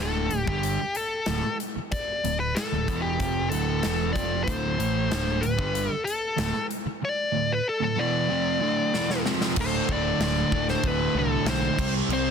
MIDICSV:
0, 0, Header, 1, 7, 480
1, 0, Start_track
1, 0, Tempo, 636267
1, 1452, Time_signature, 4, 2, 24, 8
1, 9284, End_track
2, 0, Start_track
2, 0, Title_t, "Lead electric guitar"
2, 0, Program_c, 0, 29
2, 8, Note_on_c, 0, 69, 91
2, 343, Note_off_c, 0, 69, 0
2, 367, Note_on_c, 0, 67, 78
2, 728, Note_off_c, 0, 67, 0
2, 731, Note_on_c, 0, 69, 79
2, 1182, Note_off_c, 0, 69, 0
2, 1446, Note_on_c, 0, 74, 99
2, 1785, Note_off_c, 0, 74, 0
2, 1809, Note_on_c, 0, 71, 97
2, 1922, Note_on_c, 0, 69, 91
2, 1936, Note_off_c, 0, 71, 0
2, 2274, Note_off_c, 0, 69, 0
2, 2277, Note_on_c, 0, 67, 80
2, 2622, Note_off_c, 0, 67, 0
2, 2637, Note_on_c, 0, 69, 88
2, 3098, Note_off_c, 0, 69, 0
2, 3112, Note_on_c, 0, 74, 97
2, 3343, Note_off_c, 0, 74, 0
2, 3346, Note_on_c, 0, 72, 79
2, 4081, Note_on_c, 0, 71, 87
2, 4107, Note_off_c, 0, 72, 0
2, 4466, Note_off_c, 0, 71, 0
2, 4466, Note_on_c, 0, 69, 87
2, 4560, Note_off_c, 0, 69, 0
2, 4563, Note_on_c, 0, 69, 79
2, 5023, Note_off_c, 0, 69, 0
2, 5316, Note_on_c, 0, 74, 88
2, 5677, Note_on_c, 0, 71, 89
2, 5680, Note_off_c, 0, 74, 0
2, 5793, Note_off_c, 0, 71, 0
2, 5800, Note_on_c, 0, 69, 80
2, 5903, Note_off_c, 0, 69, 0
2, 5915, Note_on_c, 0, 69, 81
2, 6029, Note_on_c, 0, 74, 87
2, 6032, Note_off_c, 0, 69, 0
2, 6954, Note_off_c, 0, 74, 0
2, 7248, Note_on_c, 0, 72, 99
2, 7480, Note_off_c, 0, 72, 0
2, 7487, Note_on_c, 0, 74, 108
2, 7711, Note_off_c, 0, 74, 0
2, 7720, Note_on_c, 0, 74, 101
2, 8042, Note_off_c, 0, 74, 0
2, 8070, Note_on_c, 0, 72, 96
2, 8203, Note_off_c, 0, 72, 0
2, 8203, Note_on_c, 0, 71, 85
2, 8434, Note_off_c, 0, 71, 0
2, 8440, Note_on_c, 0, 69, 86
2, 8668, Note_off_c, 0, 69, 0
2, 8671, Note_on_c, 0, 72, 98
2, 8993, Note_off_c, 0, 72, 0
2, 9152, Note_on_c, 0, 72, 96
2, 9284, Note_off_c, 0, 72, 0
2, 9284, End_track
3, 0, Start_track
3, 0, Title_t, "Overdriven electric guitar"
3, 0, Program_c, 1, 29
3, 0, Note_on_c, 1, 38, 71
3, 0, Note_on_c, 1, 45, 79
3, 0, Note_on_c, 1, 50, 84
3, 225, Note_off_c, 1, 38, 0
3, 227, Note_off_c, 1, 45, 0
3, 234, Note_off_c, 1, 50, 0
3, 234, Note_on_c, 1, 38, 55
3, 236, Note_on_c, 1, 45, 64
3, 345, Note_off_c, 1, 38, 0
3, 348, Note_on_c, 1, 43, 67
3, 352, Note_off_c, 1, 45, 0
3, 355, Note_on_c, 1, 50, 81
3, 360, Note_on_c, 1, 55, 86
3, 591, Note_off_c, 1, 43, 0
3, 595, Note_off_c, 1, 50, 0
3, 597, Note_off_c, 1, 55, 0
3, 972, Note_on_c, 1, 38, 87
3, 981, Note_on_c, 1, 45, 84
3, 1084, Note_off_c, 1, 38, 0
3, 1089, Note_off_c, 1, 45, 0
3, 1694, Note_on_c, 1, 38, 61
3, 1699, Note_on_c, 1, 45, 62
3, 1886, Note_off_c, 1, 38, 0
3, 1889, Note_off_c, 1, 45, 0
3, 2051, Note_on_c, 1, 38, 63
3, 2058, Note_on_c, 1, 45, 66
3, 2162, Note_off_c, 1, 38, 0
3, 2165, Note_on_c, 1, 40, 82
3, 2171, Note_off_c, 1, 45, 0
3, 2174, Note_on_c, 1, 47, 89
3, 2178, Note_on_c, 1, 52, 84
3, 2404, Note_off_c, 1, 40, 0
3, 2407, Note_on_c, 1, 41, 98
3, 2408, Note_off_c, 1, 47, 0
3, 2410, Note_off_c, 1, 52, 0
3, 2414, Note_on_c, 1, 48, 97
3, 2414, Note_on_c, 1, 53, 104
3, 2643, Note_off_c, 1, 41, 0
3, 2646, Note_on_c, 1, 38, 76
3, 2647, Note_off_c, 1, 48, 0
3, 2649, Note_off_c, 1, 53, 0
3, 2650, Note_on_c, 1, 45, 73
3, 2657, Note_on_c, 1, 50, 103
3, 2878, Note_off_c, 1, 38, 0
3, 2881, Note_on_c, 1, 40, 72
3, 2885, Note_off_c, 1, 45, 0
3, 2888, Note_on_c, 1, 47, 88
3, 2891, Note_off_c, 1, 50, 0
3, 2894, Note_on_c, 1, 52, 98
3, 3123, Note_off_c, 1, 40, 0
3, 3127, Note_off_c, 1, 47, 0
3, 3129, Note_on_c, 1, 41, 92
3, 3130, Note_off_c, 1, 52, 0
3, 3133, Note_on_c, 1, 48, 85
3, 3142, Note_on_c, 1, 53, 99
3, 3363, Note_off_c, 1, 41, 0
3, 3366, Note_on_c, 1, 38, 83
3, 3369, Note_off_c, 1, 48, 0
3, 3372, Note_on_c, 1, 45, 92
3, 3373, Note_off_c, 1, 53, 0
3, 3376, Note_on_c, 1, 50, 86
3, 3602, Note_off_c, 1, 45, 0
3, 3606, Note_off_c, 1, 38, 0
3, 3608, Note_on_c, 1, 52, 85
3, 3611, Note_off_c, 1, 50, 0
3, 3611, Note_on_c, 1, 45, 89
3, 3614, Note_on_c, 1, 57, 96
3, 3844, Note_off_c, 1, 45, 0
3, 3847, Note_on_c, 1, 38, 84
3, 3848, Note_off_c, 1, 52, 0
3, 3851, Note_off_c, 1, 57, 0
3, 3853, Note_on_c, 1, 45, 85
3, 3860, Note_on_c, 1, 50, 97
3, 4079, Note_off_c, 1, 45, 0
3, 4082, Note_off_c, 1, 38, 0
3, 4088, Note_on_c, 1, 45, 60
3, 4091, Note_on_c, 1, 38, 66
3, 4094, Note_off_c, 1, 50, 0
3, 4197, Note_off_c, 1, 38, 0
3, 4200, Note_on_c, 1, 43, 74
3, 4204, Note_off_c, 1, 45, 0
3, 4207, Note_on_c, 1, 50, 77
3, 4210, Note_on_c, 1, 55, 84
3, 4439, Note_off_c, 1, 43, 0
3, 4448, Note_off_c, 1, 50, 0
3, 4449, Note_off_c, 1, 55, 0
3, 4800, Note_on_c, 1, 38, 77
3, 4810, Note_on_c, 1, 45, 107
3, 4924, Note_off_c, 1, 38, 0
3, 4929, Note_off_c, 1, 45, 0
3, 5539, Note_on_c, 1, 45, 63
3, 5541, Note_on_c, 1, 38, 53
3, 5733, Note_off_c, 1, 45, 0
3, 5734, Note_off_c, 1, 38, 0
3, 5902, Note_on_c, 1, 38, 65
3, 5904, Note_on_c, 1, 45, 80
3, 6019, Note_off_c, 1, 38, 0
3, 6022, Note_on_c, 1, 40, 78
3, 6024, Note_off_c, 1, 45, 0
3, 6027, Note_on_c, 1, 47, 85
3, 6034, Note_on_c, 1, 52, 91
3, 6255, Note_off_c, 1, 40, 0
3, 6257, Note_off_c, 1, 47, 0
3, 6260, Note_on_c, 1, 41, 89
3, 6261, Note_off_c, 1, 52, 0
3, 6267, Note_on_c, 1, 48, 93
3, 6267, Note_on_c, 1, 53, 104
3, 6493, Note_off_c, 1, 41, 0
3, 6497, Note_off_c, 1, 48, 0
3, 6497, Note_off_c, 1, 53, 0
3, 6501, Note_on_c, 1, 38, 76
3, 6501, Note_on_c, 1, 45, 82
3, 6509, Note_on_c, 1, 50, 82
3, 6734, Note_off_c, 1, 38, 0
3, 6734, Note_off_c, 1, 45, 0
3, 6738, Note_off_c, 1, 50, 0
3, 6749, Note_on_c, 1, 40, 80
3, 6754, Note_on_c, 1, 47, 84
3, 6756, Note_on_c, 1, 52, 94
3, 6977, Note_off_c, 1, 40, 0
3, 6980, Note_off_c, 1, 47, 0
3, 6981, Note_off_c, 1, 52, 0
3, 6982, Note_on_c, 1, 41, 79
3, 6995, Note_on_c, 1, 48, 98
3, 7003, Note_on_c, 1, 53, 101
3, 7213, Note_off_c, 1, 41, 0
3, 7220, Note_off_c, 1, 48, 0
3, 7221, Note_on_c, 1, 38, 85
3, 7223, Note_off_c, 1, 53, 0
3, 7229, Note_on_c, 1, 45, 102
3, 7232, Note_on_c, 1, 50, 113
3, 7460, Note_off_c, 1, 38, 0
3, 7468, Note_off_c, 1, 45, 0
3, 7468, Note_off_c, 1, 50, 0
3, 7469, Note_on_c, 1, 38, 78
3, 7477, Note_on_c, 1, 45, 99
3, 7477, Note_on_c, 1, 50, 97
3, 7694, Note_off_c, 1, 38, 0
3, 7702, Note_off_c, 1, 45, 0
3, 7703, Note_on_c, 1, 38, 94
3, 7710, Note_off_c, 1, 50, 0
3, 7711, Note_on_c, 1, 45, 94
3, 7719, Note_on_c, 1, 50, 93
3, 7929, Note_off_c, 1, 38, 0
3, 7938, Note_on_c, 1, 38, 84
3, 7941, Note_off_c, 1, 45, 0
3, 7942, Note_off_c, 1, 50, 0
3, 7950, Note_on_c, 1, 45, 80
3, 7951, Note_on_c, 1, 50, 100
3, 8170, Note_off_c, 1, 38, 0
3, 8170, Note_off_c, 1, 45, 0
3, 8179, Note_on_c, 1, 38, 84
3, 8179, Note_on_c, 1, 45, 100
3, 8180, Note_off_c, 1, 50, 0
3, 8189, Note_on_c, 1, 50, 103
3, 8396, Note_off_c, 1, 38, 0
3, 8403, Note_off_c, 1, 45, 0
3, 8405, Note_on_c, 1, 38, 88
3, 8406, Note_off_c, 1, 50, 0
3, 8412, Note_on_c, 1, 45, 76
3, 8415, Note_on_c, 1, 50, 87
3, 8642, Note_off_c, 1, 38, 0
3, 8646, Note_off_c, 1, 45, 0
3, 8649, Note_off_c, 1, 50, 0
3, 8651, Note_on_c, 1, 38, 87
3, 8655, Note_on_c, 1, 45, 94
3, 8658, Note_on_c, 1, 50, 105
3, 8875, Note_off_c, 1, 38, 0
3, 8877, Note_off_c, 1, 45, 0
3, 8878, Note_off_c, 1, 50, 0
3, 8892, Note_on_c, 1, 48, 99
3, 8897, Note_on_c, 1, 55, 108
3, 8899, Note_on_c, 1, 60, 123
3, 9118, Note_off_c, 1, 48, 0
3, 9124, Note_off_c, 1, 55, 0
3, 9127, Note_on_c, 1, 48, 86
3, 9129, Note_off_c, 1, 60, 0
3, 9133, Note_on_c, 1, 55, 100
3, 9138, Note_on_c, 1, 60, 110
3, 9284, Note_off_c, 1, 48, 0
3, 9284, Note_off_c, 1, 55, 0
3, 9284, Note_off_c, 1, 60, 0
3, 9284, End_track
4, 0, Start_track
4, 0, Title_t, "Picked electric bass"
4, 0, Program_c, 2, 34
4, 0, Note_on_c, 2, 26, 83
4, 223, Note_off_c, 2, 26, 0
4, 232, Note_on_c, 2, 26, 75
4, 351, Note_off_c, 2, 26, 0
4, 359, Note_on_c, 2, 31, 97
4, 587, Note_off_c, 2, 31, 0
4, 963, Note_on_c, 2, 26, 81
4, 1078, Note_off_c, 2, 26, 0
4, 1694, Note_on_c, 2, 26, 71
4, 1918, Note_off_c, 2, 26, 0
4, 2063, Note_on_c, 2, 26, 74
4, 2171, Note_off_c, 2, 26, 0
4, 2174, Note_on_c, 2, 28, 84
4, 2399, Note_off_c, 2, 28, 0
4, 2410, Note_on_c, 2, 29, 72
4, 2637, Note_off_c, 2, 29, 0
4, 2660, Note_on_c, 2, 26, 84
4, 2882, Note_off_c, 2, 26, 0
4, 2900, Note_on_c, 2, 28, 94
4, 3123, Note_off_c, 2, 28, 0
4, 3129, Note_on_c, 2, 29, 97
4, 3357, Note_off_c, 2, 29, 0
4, 3375, Note_on_c, 2, 26, 89
4, 3601, Note_off_c, 2, 26, 0
4, 3615, Note_on_c, 2, 33, 82
4, 3841, Note_off_c, 2, 33, 0
4, 3858, Note_on_c, 2, 26, 81
4, 4083, Note_off_c, 2, 26, 0
4, 4095, Note_on_c, 2, 26, 70
4, 4208, Note_off_c, 2, 26, 0
4, 4820, Note_on_c, 2, 26, 82
4, 4933, Note_off_c, 2, 26, 0
4, 7218, Note_on_c, 2, 26, 93
4, 7388, Note_off_c, 2, 26, 0
4, 7458, Note_on_c, 2, 26, 90
4, 7628, Note_off_c, 2, 26, 0
4, 7693, Note_on_c, 2, 26, 92
4, 7864, Note_off_c, 2, 26, 0
4, 7934, Note_on_c, 2, 26, 87
4, 8104, Note_off_c, 2, 26, 0
4, 8176, Note_on_c, 2, 26, 85
4, 8344, Note_off_c, 2, 26, 0
4, 8408, Note_on_c, 2, 36, 93
4, 8579, Note_off_c, 2, 36, 0
4, 8638, Note_on_c, 2, 35, 89
4, 8812, Note_off_c, 2, 35, 0
4, 8888, Note_on_c, 2, 36, 95
4, 9057, Note_off_c, 2, 36, 0
4, 9118, Note_on_c, 2, 36, 104
4, 9284, Note_off_c, 2, 36, 0
4, 9284, End_track
5, 0, Start_track
5, 0, Title_t, "Muted overdriven electric guitar strokes"
5, 604, Note_on_c, 9, 29, 58
5, 680, Note_off_c, 9, 29, 0
5, 1096, Note_on_c, 9, 29, 51
5, 1171, Note_off_c, 9, 29, 0
5, 1347, Note_on_c, 9, 29, 57
5, 1423, Note_off_c, 9, 29, 0
5, 1451, Note_on_c, 9, 29, 58
5, 1526, Note_off_c, 9, 29, 0
5, 4442, Note_on_c, 9, 29, 53
5, 4517, Note_off_c, 9, 29, 0
5, 4933, Note_on_c, 9, 29, 51
5, 5009, Note_off_c, 9, 29, 0
5, 5180, Note_on_c, 9, 29, 56
5, 5255, Note_off_c, 9, 29, 0
5, 5299, Note_on_c, 9, 29, 53
5, 5375, Note_off_c, 9, 29, 0
5, 9284, End_track
6, 0, Start_track
6, 0, Title_t, "Muted picked electric bass strokes"
6, 602, Note_on_c, 9, 29, 40
6, 678, Note_off_c, 9, 29, 0
6, 1093, Note_on_c, 9, 29, 39
6, 1168, Note_off_c, 9, 29, 0
6, 1332, Note_on_c, 9, 29, 41
6, 1407, Note_off_c, 9, 29, 0
6, 1446, Note_on_c, 9, 29, 39
6, 1521, Note_off_c, 9, 29, 0
6, 4456, Note_on_c, 9, 29, 41
6, 4531, Note_off_c, 9, 29, 0
6, 4939, Note_on_c, 9, 29, 38
6, 5014, Note_off_c, 9, 29, 0
6, 5172, Note_on_c, 9, 29, 35
6, 5247, Note_off_c, 9, 29, 0
6, 9284, End_track
7, 0, Start_track
7, 0, Title_t, "Drums"
7, 231, Note_on_c, 9, 42, 56
7, 306, Note_off_c, 9, 42, 0
7, 358, Note_on_c, 9, 36, 92
7, 434, Note_off_c, 9, 36, 0
7, 478, Note_on_c, 9, 42, 82
7, 553, Note_off_c, 9, 42, 0
7, 716, Note_on_c, 9, 42, 54
7, 791, Note_off_c, 9, 42, 0
7, 951, Note_on_c, 9, 42, 79
7, 953, Note_on_c, 9, 38, 104
7, 1027, Note_off_c, 9, 42, 0
7, 1029, Note_off_c, 9, 38, 0
7, 1207, Note_on_c, 9, 42, 55
7, 1283, Note_off_c, 9, 42, 0
7, 1446, Note_on_c, 9, 42, 74
7, 1450, Note_on_c, 9, 36, 96
7, 1521, Note_off_c, 9, 42, 0
7, 1525, Note_off_c, 9, 36, 0
7, 1695, Note_on_c, 9, 42, 62
7, 1770, Note_off_c, 9, 42, 0
7, 1935, Note_on_c, 9, 42, 77
7, 1937, Note_on_c, 9, 38, 88
7, 2010, Note_off_c, 9, 42, 0
7, 2013, Note_off_c, 9, 38, 0
7, 2173, Note_on_c, 9, 36, 95
7, 2174, Note_on_c, 9, 42, 56
7, 2249, Note_off_c, 9, 36, 0
7, 2249, Note_off_c, 9, 42, 0
7, 2412, Note_on_c, 9, 42, 75
7, 2415, Note_on_c, 9, 36, 97
7, 2488, Note_off_c, 9, 42, 0
7, 2490, Note_off_c, 9, 36, 0
7, 2653, Note_on_c, 9, 42, 58
7, 2728, Note_off_c, 9, 42, 0
7, 2889, Note_on_c, 9, 42, 87
7, 2891, Note_on_c, 9, 38, 103
7, 2964, Note_off_c, 9, 42, 0
7, 2967, Note_off_c, 9, 38, 0
7, 3135, Note_on_c, 9, 36, 97
7, 3139, Note_on_c, 9, 42, 57
7, 3211, Note_off_c, 9, 36, 0
7, 3215, Note_off_c, 9, 42, 0
7, 3377, Note_on_c, 9, 36, 88
7, 3377, Note_on_c, 9, 42, 73
7, 3452, Note_off_c, 9, 36, 0
7, 3452, Note_off_c, 9, 42, 0
7, 3620, Note_on_c, 9, 42, 62
7, 3696, Note_off_c, 9, 42, 0
7, 3859, Note_on_c, 9, 42, 73
7, 3861, Note_on_c, 9, 38, 102
7, 3934, Note_off_c, 9, 42, 0
7, 3937, Note_off_c, 9, 38, 0
7, 4096, Note_on_c, 9, 42, 55
7, 4171, Note_off_c, 9, 42, 0
7, 4214, Note_on_c, 9, 36, 90
7, 4290, Note_off_c, 9, 36, 0
7, 4339, Note_on_c, 9, 42, 78
7, 4415, Note_off_c, 9, 42, 0
7, 4581, Note_on_c, 9, 42, 58
7, 4657, Note_off_c, 9, 42, 0
7, 4815, Note_on_c, 9, 42, 80
7, 4817, Note_on_c, 9, 38, 104
7, 4891, Note_off_c, 9, 42, 0
7, 4893, Note_off_c, 9, 38, 0
7, 5059, Note_on_c, 9, 42, 51
7, 5134, Note_off_c, 9, 42, 0
7, 6744, Note_on_c, 9, 38, 58
7, 6819, Note_off_c, 9, 38, 0
7, 6865, Note_on_c, 9, 38, 62
7, 6940, Note_off_c, 9, 38, 0
7, 6983, Note_on_c, 9, 38, 81
7, 7058, Note_off_c, 9, 38, 0
7, 7100, Note_on_c, 9, 38, 69
7, 7175, Note_off_c, 9, 38, 0
7, 7213, Note_on_c, 9, 49, 110
7, 7213, Note_on_c, 9, 57, 59
7, 7219, Note_on_c, 9, 36, 108
7, 7288, Note_off_c, 9, 49, 0
7, 7288, Note_off_c, 9, 57, 0
7, 7294, Note_off_c, 9, 36, 0
7, 7459, Note_on_c, 9, 36, 84
7, 7535, Note_off_c, 9, 36, 0
7, 7698, Note_on_c, 9, 57, 59
7, 7700, Note_on_c, 9, 38, 103
7, 7773, Note_off_c, 9, 57, 0
7, 7776, Note_off_c, 9, 38, 0
7, 7938, Note_on_c, 9, 36, 81
7, 8013, Note_off_c, 9, 36, 0
7, 8059, Note_on_c, 9, 38, 32
7, 8135, Note_off_c, 9, 38, 0
7, 8172, Note_on_c, 9, 57, 63
7, 8175, Note_on_c, 9, 36, 114
7, 8248, Note_off_c, 9, 57, 0
7, 8250, Note_off_c, 9, 36, 0
7, 8647, Note_on_c, 9, 57, 58
7, 8649, Note_on_c, 9, 38, 111
7, 8722, Note_off_c, 9, 57, 0
7, 8725, Note_off_c, 9, 38, 0
7, 8891, Note_on_c, 9, 36, 103
7, 8893, Note_on_c, 9, 57, 90
7, 8966, Note_off_c, 9, 36, 0
7, 8968, Note_off_c, 9, 57, 0
7, 9130, Note_on_c, 9, 57, 58
7, 9205, Note_off_c, 9, 57, 0
7, 9284, End_track
0, 0, End_of_file